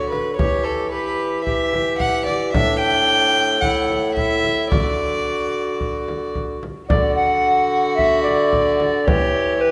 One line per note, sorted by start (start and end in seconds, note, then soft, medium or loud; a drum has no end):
0.00 0.35 D3 medium
0.00 0.35 F#4 medium
0.10 0.36 B4 medium
0.10 frame drum soft
0.37 2.50 E3 medium
0.37 0.89 G4 soft
0.37 0.66 C#5 medium
0.37 frame drum medium
0.64 0.91 A4 medium
0.90 1.43 G4 medium
0.90 1.44 B4 medium
1.45 2.55 G4 medium
1.45 1.98 E5 medium
1.45 frame drum soft
1.73 frame drum soft
1.98 2.25 F#5 medium
1.98 frame drum soft
2.26 2.53 D5 medium
2.26 frame drum soft
2.53 4.66 A2 medium
2.53 3.61 D4 medium
2.53 2.78 E5 loud
2.53 frame drum medium
2.79 3.62 G5 loud
3.61 4.15 E4 medium
3.61 4.14 F#5 medium
3.61 frame drum soft
3.90 frame drum soft
4.15 4.73 E4 medium
4.15 4.69 E5 medium
4.15 frame drum soft
4.44 frame drum soft
4.70 6.59 D3 medium
4.70 6.63 F#4 medium
4.70 6.31 D5 medium
4.70 frame drum medium
5.80 frame drum soft
6.08 frame drum soft
6.35 frame drum soft
6.63 frame drum soft
6.88 9.09 D3 medium
6.88 9.01 F#4 medium
6.88 7.14 D5 medium
6.88 frame drum medium
7.15 7.96 F#5 loud
7.96 8.22 E5 loud
7.96 frame drum soft
8.23 9.08 D5 medium
8.23 frame drum soft
8.53 frame drum soft
8.80 frame drum soft
9.06 9.71 E3 medium
9.06 9.58 G4 medium
9.06 9.62 C#5 loud
9.06 frame drum medium
9.58 9.71 G4 medium
9.58 9.71 B4 loud